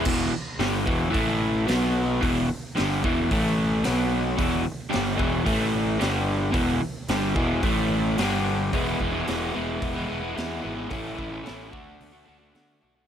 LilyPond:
<<
  \new Staff \with { instrumentName = "Overdriven electric guitar" } { \clef bass \time 4/4 \key a \lydian \tempo 4 = 111 <e, b, e>8 r8 <g, d g>8 <e, b, e>8 <a, e a>4 <b, fis b>4 | <e, b, e>8 r8 <g, d g>8 <e, b, e>8 <a, e a>4 <b, fis b>4 | <e, b, e>8 r8 <g, d g>8 <e, b, e>8 <a, e a>4 <g, d g>4 | <e, b, e>8 r8 <g, d g>8 <e, b, e>8 <a, e a>4 <g, d g>4 |
\key e \mixolydian <e, b, e gis b e'>8 <e gis b e'>16 <e gis b e'>16 <e, b, e gis b e'>8 <e gis b e'>8. <e gis b e'>16 <e gis b e'>16 <e gis b e'>16 <e, b, e gis b e'>8 <e gis b e'>16 <e gis b e'>16 | <a, e a cis' e'>8 <e a cis' e'>16 <a cis' e'>16 <a, e a cis' e'>8 <d a d' fis'>8. <a d' fis'>16 <d a d' fis'>16 <a d' fis'>16 <d a d' fis'>8 <d a d' fis'>16 <a d' fis'>16 | }
  \new Staff \with { instrumentName = "Picked electric bass" } { \clef bass \time 4/4 \key a \lydian e,,8 r8 g,,8 e,,8 a,,4 b,,4 | e,,8 r8 g,,8 e,,8 a,,4 b,,4 | e,,8 r8 g,,8 e,,8 a,,4 g,,4 | e,,8 r8 g,,8 e,,8 a,,4 g,,4 |
\key e \mixolydian e,,8 e,,8 e,,8 e,,8 e,,8 e,,8 e,8 gis,,8 | a,,8 a,,8 a,,8 d,8 d,8 d,8 d8 b,,8 | }
  \new DrumStaff \with { instrumentName = "Drums" } \drummode { \time 4/4 <cymc bd>4 <hho sn>8 bd8 <hho bd>4 <hho sn>4 | <hho bd>4 <hho sn>8 bd8 <hho bd>4 <hho sn>4 | <hho bd>4 <hho sn>8 bd8 <hho bd>4 <hho sn>4 | <hho bd>4 <hho sn>8 bd8 <hho bd>4 <hho sn>4 |
<hho bd>8 bd8 <hho sn>4 <hho bd>4 <hho sn>4 | <hho bd>8 bd8 <hho sn>8 bd8 hho4 <hho sn>4 | }
>>